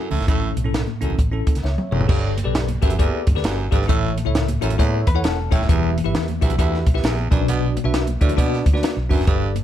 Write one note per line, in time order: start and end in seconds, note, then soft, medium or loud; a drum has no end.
0.00 0.16 C#4 medium
0.00 0.16 E4 medium
0.00 0.17 A4 medium
0.11 0.18 C#2 medium
0.11 0.25 A2 medium
0.11 open hi-hat soft
0.11 low conga medium
0.19 0.27 G#1 medium
0.19 snare soft
0.27 0.52 A1 loud
0.27 0.98 A2 medium
0.27 0.51 A2 medium
0.27 0.55 C#4 medium
0.27 0.55 E4 medium
0.27 0.56 A4 medium
0.27 kick loud
0.27 closed hi-hat medium
0.27 low conga medium
0.43 muted conga soft
0.56 0.83 B1 medium
0.56 closed hi-hat medium
0.56 high conga medium
0.64 0.86 C#4 medium
0.64 0.87 E4 medium
0.64 0.87 A4 medium
0.74 snare loud
0.74 closed hi-hat medium
0.74 muted conga soft
0.87 high conga medium
1.01 1.09 C#2 medium
1.01 1.15 F#2 medium
1.01 1.18 C#4 medium
1.01 1.18 E4 medium
1.01 1.18 A4 medium
1.01 closed hi-hat medium
1.10 1.18 B1 medium
1.10 low conga medium
1.18 1.42 A1 medium
1.18 kick medium
1.18 closed hi-hat medium
1.18 high conga medium
1.32 1.54 C#4 medium
1.32 1.55 E4 medium
1.32 1.55 A4 medium
1.32 muted conga soft
1.47 muted fingered electric bass stroke soft
1.47 kick medium
1.47 closed hi-hat medium
1.47 high conga medium
1.55 1.63 C#2 medium
1.55 snare soft
1.55 closed hi-hat medium
1.64 1.76 C#2 medium
1.64 1.90 C#5 medium
1.64 1.90 E5 medium
1.64 snare medium
1.64 muted conga soft
1.64 high conga medium
1.78 high tom medium
1.78 muted conga soft
1.78 high conga soft
1.91 2.06 F#1 medium
1.91 2.06 E2 medium
1.91 2.07 A4 medium
1.91 2.34 C#5 medium
1.91 mid tom medium
1.91 low conga medium
2.01 floor tom medium
2.08 2.40 G1 loud
2.08 2.78 G2 medium
2.08 2.31 G2 medium
2.08 2.36 G4 medium
2.08 2.36 A4 medium
2.08 2.36 B4 medium
2.08 2.36 D5 medium
2.08 kick loud
2.08 crash loud
2.38 closed hi-hat medium
2.38 high conga medium
2.44 2.77 B1 loud
2.44 2.67 G4 medium
2.44 2.67 A4 medium
2.44 2.67 B4 medium
2.44 2.67 D5 medium
2.55 snare loud
2.55 closed hi-hat loud
2.68 closed hi-hat medium
2.68 high conga medium
2.82 3.09 G1 loud
2.82 2.96 F#2 medium
2.82 2.93 G4 medium
2.82 2.93 A4 medium
2.82 2.93 B4 medium
2.82 2.94 E5 loud
2.82 kick medium
2.82 closed hi-hat medium
2.90 closed hi-hat medium
2.90 low conga medium
2.99 3.22 E2 medium
2.99 3.26 G4 medium
2.99 3.26 A4 medium
2.99 3.26 B4 medium
2.99 3.27 D5 loud
2.99 kick medium
2.99 closed hi-hat medium
2.99 muted conga soft
2.99 high conga medium
3.27 3.35 G2 medium
3.27 kick medium
3.27 closed hi-hat medium
3.27 high conga medium
3.35 3.43 D2 medium
3.35 3.57 G4 medium
3.35 3.57 A4 medium
3.35 3.58 B4 medium
3.35 3.58 D5 medium
3.35 snare soft
3.44 3.68 G1 medium
3.44 3.66 F#2 medium
3.44 snare loud
3.44 closed hi-hat medium
3.44 muted conga soft
3.44 high conga medium
3.60 muted conga soft
3.60 high conga soft
3.71 3.87 G#1 loud
3.71 3.86 G2 medium
3.71 3.83 G4 medium
3.71 3.83 A4 medium
3.71 3.83 B4 medium
3.71 3.83 D5 medium
3.71 kick medium
3.71 closed hi-hat medium
3.71 low conga medium
3.82 snare soft
3.88 4.20 A1 loud
3.88 4.11 A2 medium
3.88 4.58 A2 medium
3.88 4.16 E4 medium
3.88 4.16 A4 medium
3.88 4.16 C#5 medium
3.88 4.16 E5 medium
3.88 kick loud
3.88 closed hi-hat loud
3.88 muted conga soft
4.04 muted conga soft
4.18 closed hi-hat medium
4.18 high conga medium
4.25 4.57 C#2 medium
4.25 4.47 E4 medium
4.25 4.47 A4 medium
4.25 4.47 C#5 medium
4.25 4.48 E5 medium
4.35 snare loud
4.35 closed hi-hat medium
4.48 closed hi-hat medium
4.48 muted conga soft
4.48 high conga medium
4.61 4.76 A1 medium
4.61 4.75 F#2 medium
4.61 4.73 E4 medium
4.61 4.73 A4 medium
4.61 4.73 C#5 medium
4.61 4.73 E5 loud
4.61 closed hi-hat medium
4.70 closed hi-hat medium
4.70 low conga medium
4.78 5.01 E2 medium
4.78 5.03 A2 loud
4.78 5.06 E4 medium
4.78 5.06 A4 medium
4.78 5.06 C#5 medium
4.78 5.06 E5 loud
4.78 kick loud
4.78 closed hi-hat medium
4.78 high conga medium
4.94 muted conga soft
5.07 5.22 E2 medium
5.07 5.23 B4 medium
5.07 kick medium
5.07 closed hi-hat medium
5.07 high conga medium
5.15 5.37 E4 medium
5.15 5.37 A4 medium
5.15 5.37 C#5 medium
5.15 5.37 F#5 loud
5.24 5.48 E1 loud
5.24 5.51 C#4 medium
5.24 5.51 A4 medium
5.24 snare loud
5.24 closed hi-hat medium
5.24 high conga medium
5.39 high conga soft
5.51 5.66 D#1 loud
5.51 5.66 A2 medium
5.51 5.95 G3 medium
5.51 5.62 E4 medium
5.51 5.95 E4 medium
5.51 5.63 A4 medium
5.51 5.63 C#5 medium
5.51 5.63 G5 loud
5.51 kick medium
5.51 closed hi-hat medium
5.51 low conga medium
5.62 snare soft
5.69 6.00 E1 loud
5.69 5.91 E2 medium
5.69 6.38 E3 medium
5.69 5.96 E4 medium
5.69 5.96 G4 medium
5.69 5.96 B4 medium
5.69 5.96 E5 medium
5.69 kick loud
5.69 closed hi-hat loud
5.69 muted conga soft
5.83 muted conga soft
5.98 closed hi-hat medium
5.98 high conga medium
6.04 6.15 G1 medium
6.04 6.26 E4 medium
6.04 6.27 G4 medium
6.04 6.27 B4 medium
6.04 6.27 E5 loud
6.14 6.37 E2 loud
6.14 snare loud
6.14 closed hi-hat medium
6.28 closed hi-hat medium
6.28 high conga medium
6.41 6.56 B1 loud
6.41 6.55 D2 medium
6.41 6.52 E4 medium
6.41 6.53 G4 medium
6.41 6.53 B4 medium
6.41 6.53 E5 loud
6.41 kick medium
6.41 closed hi-hat medium
6.50 closed hi-hat medium
6.50 low conga medium
6.58 6.81 D2 medium
6.58 6.82 E2 loud
6.58 6.86 E4 medium
6.58 6.86 G4 medium
6.58 6.86 B4 medium
6.58 6.86 E5 loud
6.58 kick medium
6.58 closed hi-hat medium
6.58 high conga medium
6.73 snare soft
6.73 muted conga soft
6.87 7.01 B1 loud
6.87 kick loud
6.87 closed hi-hat medium
6.87 high conga medium
6.94 7.16 E4 medium
6.94 7.17 G4 medium
6.94 7.17 B4 medium
6.94 7.17 E5 loud
6.94 snare soft
7.03 7.27 A#1 loud
7.03 7.26 E2 medium
7.03 snare loud
7.03 closed hi-hat medium
7.03 muted conga soft
7.03 high conga medium
7.18 muted conga soft
7.18 high conga soft
7.31 7.77 B1 loud
7.31 7.45 F#2 medium
7.31 7.90 B2 medium
7.31 7.76 D4 loud
7.31 7.77 F#4 medium
7.31 7.77 B4 medium
7.31 7.77 D5 loud
7.31 kick loud
7.31 closed hi-hat medium
7.31 low conga medium
7.48 7.71 B2 medium
7.48 closed hi-hat loud
7.48 muted conga soft
7.48 low conga medium
7.77 closed hi-hat medium
7.77 high conga medium
7.84 8.16 B1 medium
7.84 8.06 D4 medium
7.84 8.06 F#4 medium
7.84 8.07 B4 medium
7.84 8.07 E5 loud
7.94 snare loud
7.94 closed hi-hat loud
8.07 closed hi-hat medium
8.07 muted conga soft
8.07 high conga medium
8.21 8.36 D2 loud
8.21 8.35 A2 medium
8.21 8.32 D4 medium
8.21 8.32 F#4 medium
8.21 8.33 B4 medium
8.21 8.33 D5 loud
8.21 kick medium
8.21 closed hi-hat medium
8.29 closed hi-hat medium
8.29 low conga medium
8.37 8.60 B2 medium
8.37 8.62 B2 loud
8.37 8.65 D4 medium
8.37 8.65 F#4 medium
8.37 8.65 B4 medium
8.37 8.65 D5 loud
8.37 kick loud
8.37 closed hi-hat medium
8.37 muted conga soft
8.37 high conga medium
8.53 snare soft
8.66 8.81 D2 medium
8.66 kick medium
8.66 closed hi-hat medium
8.66 high conga medium
8.73 8.96 D4 medium
8.73 8.96 F#4 medium
8.73 8.96 B4 medium
8.73 8.97 D5 loud
8.73 snare soft
8.83 snare loud
8.83 closed hi-hat loud
8.83 muted conga soft
8.83 high conga medium
8.97 9.09 B1 medium
8.97 muted conga soft
8.97 high conga medium
9.09 9.18 F1 medium
9.09 9.24 F#2 medium
9.09 9.21 D4 medium
9.09 9.22 F#4 medium
9.09 9.22 B4 medium
9.09 9.22 E5 medium
9.09 kick medium
9.09 open hi-hat medium
9.09 low conga medium
9.19 9.26 F#1 medium
9.19 snare soft
9.27 9.59 G1 loud
9.27 9.50 G2 medium
9.27 9.64 G2 medium
9.27 9.55 G4 medium
9.27 9.55 A4 medium
9.27 9.55 B4 medium
9.27 9.55 D5 medium
9.27 kick loud
9.27 closed hi-hat loud
9.27 muted conga soft
9.42 muted conga soft
9.56 closed hi-hat medium
9.56 high conga medium